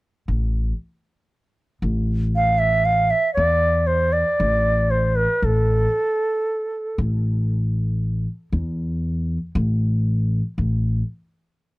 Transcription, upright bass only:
0, 0, Header, 1, 2, 480
1, 0, Start_track
1, 0, Tempo, 1027397
1, 139, Time_signature, 10, 3, 24, 8
1, 5506, End_track
2, 0, Start_track
2, 0, Title_t, "Upright bass"
2, 0, Program_c, 0, 32
2, 131, Note_on_c, 0, 33, 72
2, 331, Note_off_c, 0, 33, 0
2, 851, Note_on_c, 0, 33, 84
2, 1445, Note_off_c, 0, 33, 0
2, 1576, Note_on_c, 0, 40, 79
2, 1971, Note_off_c, 0, 40, 0
2, 2055, Note_on_c, 0, 33, 82
2, 2450, Note_off_c, 0, 33, 0
2, 2534, Note_on_c, 0, 33, 75
2, 2733, Note_off_c, 0, 33, 0
2, 3262, Note_on_c, 0, 33, 77
2, 3853, Note_off_c, 0, 33, 0
2, 3983, Note_on_c, 0, 40, 79
2, 4376, Note_off_c, 0, 40, 0
2, 4462, Note_on_c, 0, 33, 89
2, 4857, Note_off_c, 0, 33, 0
2, 4942, Note_on_c, 0, 33, 72
2, 5139, Note_off_c, 0, 33, 0
2, 5506, End_track
0, 0, End_of_file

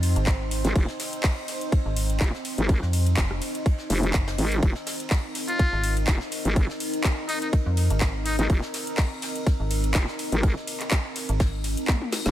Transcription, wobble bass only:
0, 0, Header, 1, 2, 480
1, 0, Start_track
1, 0, Key_signature, -4, "minor"
1, 0, Tempo, 483871
1, 749, Time_signature, 4, 2, 24, 8
1, 12212, End_track
2, 0, Start_track
2, 0, Title_t, "Wobble bass"
2, 0, Program_c, 0, 39
2, 641, Note_on_c, 0, 32, 96
2, 732, Note_off_c, 0, 32, 0
2, 750, Note_on_c, 0, 29, 98
2, 860, Note_off_c, 0, 29, 0
2, 2190, Note_on_c, 0, 29, 98
2, 2300, Note_off_c, 0, 29, 0
2, 2561, Note_on_c, 0, 32, 96
2, 2780, Note_off_c, 0, 32, 0
2, 3869, Note_on_c, 0, 29, 99
2, 4092, Note_off_c, 0, 29, 0
2, 4349, Note_on_c, 0, 32, 98
2, 4572, Note_off_c, 0, 32, 0
2, 4589, Note_on_c, 0, 29, 96
2, 4700, Note_off_c, 0, 29, 0
2, 6029, Note_on_c, 0, 29, 96
2, 6140, Note_off_c, 0, 29, 0
2, 6401, Note_on_c, 0, 32, 94
2, 6620, Note_off_c, 0, 32, 0
2, 8321, Note_on_c, 0, 32, 99
2, 8412, Note_off_c, 0, 32, 0
2, 8430, Note_on_c, 0, 29, 100
2, 8540, Note_off_c, 0, 29, 0
2, 9870, Note_on_c, 0, 29, 100
2, 9980, Note_off_c, 0, 29, 0
2, 10241, Note_on_c, 0, 32, 96
2, 10460, Note_off_c, 0, 32, 0
2, 12161, Note_on_c, 0, 29, 97
2, 12212, Note_off_c, 0, 29, 0
2, 12212, End_track
0, 0, End_of_file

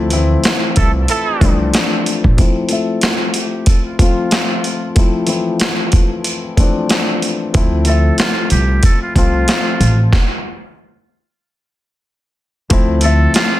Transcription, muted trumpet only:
0, 0, Header, 1, 2, 480
1, 0, Start_track
1, 0, Key_signature, -1, "minor"
1, 0, Tempo, 645161
1, 1774, Time_signature, 4, 2, 24, 8
1, 10118, End_track
2, 0, Start_track
2, 0, Title_t, "Muted trumpet"
2, 0, Program_c, 0, 59
2, 2012, Note_on_c, 0, 69, 73
2, 2229, Note_off_c, 0, 69, 0
2, 2251, Note_on_c, 0, 65, 89
2, 2468, Note_off_c, 0, 65, 0
2, 2497, Note_on_c, 0, 67, 82
2, 2711, Note_off_c, 0, 67, 0
2, 2731, Note_on_c, 0, 69, 83
2, 2855, Note_off_c, 0, 69, 0
2, 2866, Note_on_c, 0, 65, 70
2, 2961, Note_off_c, 0, 65, 0
2, 2965, Note_on_c, 0, 65, 94
2, 3660, Note_off_c, 0, 65, 0
2, 5852, Note_on_c, 0, 69, 83
2, 6069, Note_off_c, 0, 69, 0
2, 6088, Note_on_c, 0, 65, 98
2, 6306, Note_off_c, 0, 65, 0
2, 6333, Note_on_c, 0, 67, 82
2, 6549, Note_off_c, 0, 67, 0
2, 6580, Note_on_c, 0, 69, 91
2, 6700, Note_off_c, 0, 69, 0
2, 6715, Note_on_c, 0, 65, 77
2, 6806, Note_off_c, 0, 65, 0
2, 6816, Note_on_c, 0, 65, 85
2, 7505, Note_off_c, 0, 65, 0
2, 9693, Note_on_c, 0, 69, 82
2, 9909, Note_off_c, 0, 69, 0
2, 9935, Note_on_c, 0, 65, 91
2, 10118, Note_off_c, 0, 65, 0
2, 10118, End_track
0, 0, End_of_file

